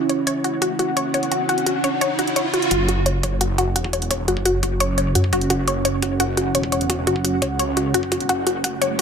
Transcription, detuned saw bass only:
2.71 F#1
3.23 F#1
3.76 E1
4.28 F#1
4.63 F#1
5.15 F#2
5.33 F#1
5.50 F#1
6.02 F#1
6.55 E1
7.07 F#1
7.42 C#2
7.94 F#1
8.29 F#1
8.82 F#1

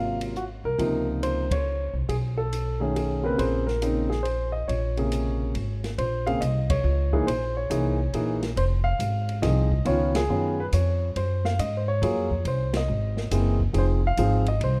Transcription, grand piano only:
Already playing: C3 F#3 A#3 F4 F5
0.37 F#4
0.65 A#4
0.78 C3 F3 A#3 D#4
1.23 C5
1.52 C#5
2.09 G#4
2.38 A4
2.80 D#3 A3 C#4 G#4
2.96 G#4
3.23 C#3 A#3 C4 A#4 B4
3.37 C#3 A#3 C4 G#4 C5
3.67 A#4
3.82 C#3 A#3 C4 D#4
4.10 G#4
4.23 C5
4.52 D#5
4.68 C#5
4.97 C3 C#3 A#3 G#4
5.98 C5
6.26 C#3 A#3 C4 G#4 F5
6.41 D#5
6.70 C#5
7.13 E3 A#3 D#4 G#4
7.27 C5
7.57 C#5
7.70 E3 A#3 D#4 G#4
8.14 E3 A#3 D#4 G#4
8.57 C5
8.84 F5
9.42 F3 C4 D#4 G#4 D#5
9.85 D#3 B3 C#4 F4 C#5
10.16 G#4
10.29 D#3 B3 C#4 F4
10.60 B4
10.74 C#5
11.17 C5
11.45 F5
11.60 D#5
11.77 C5
11.88 C#5
12.02 F#3 A#3 F4 G#4
12.48 C5
12.77 D#5
13.31 E3 A#3 C4 G#4
13.73 F3 C4 D#4 G#4
13.78 C5
14.07 F5
14.18 F3 C4 D#4 G#4
14.48 D#5
14.64 C5

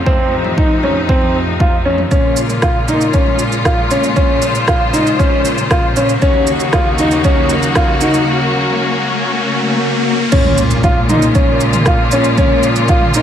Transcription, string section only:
Already playing: A2 C3 F3 C4
0.06 D#4
2.11 C#3 G#3 A#3 F4
4.17 C5
6.22 F#3 A#3 D#4 F#4
8.27 C#4
10.32 C#3 F3 G#3 A#3 F4

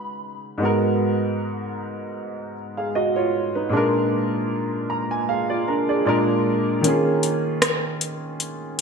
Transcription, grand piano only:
Already playing: C#3 G#3 D#4 F#4 B4
0.58 G#2 G#3 B3
0.63 F#4 A#4
2.77 G#4 F5
2.95 F#4 D#5
3.16 F4 C#5
3.55 D#4 B4
3.69 A#2 G#3 D4
3.75 F4 A#4
4.90 A#5
5.11 G#5
5.29 G#4 F5
5.50 F4 D5
5.68 D4 A#4
5.89 G#4 D5
6.05 A#2 G#3 D4 F4 A#4 D5
6.81 D#3 A#3 C#4
6.87 F4 G#4

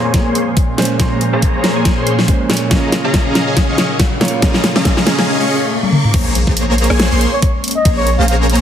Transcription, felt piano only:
Already playing: A#2 G#3 C#4 C6
0.77 A#2 G#3 C#4 C5
0.98 A#2 G#3 C#4 C6
2.27 A#2 G#3 C#4 C5
2.49 A#2 G#3 C#4 C#5
2.69 C#3 A#3 F4 C#5
4.20 C#3 A#3 F4 C#5
4.40 C#3
4.44 C#5

